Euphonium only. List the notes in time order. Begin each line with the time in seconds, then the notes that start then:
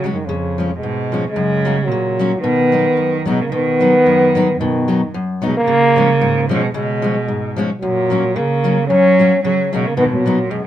Already playing: F#3
0.12 D#3
0.25 C#3
0.76 G#3
1.30 G#3
1.85 F#3
2.40 B3
3.28 G#3
3.42 A#3
3.53 B3
4.60 D#3
5.45 G#3
5.57 A#3
6.49 G#3
6.73 G#3
7.81 F#3
8.36 A#3
8.88 C#4
9.44 C#4
9.74 G#3
9.87 A#3
9.97 B3
10.13 F#3
10.51 G#3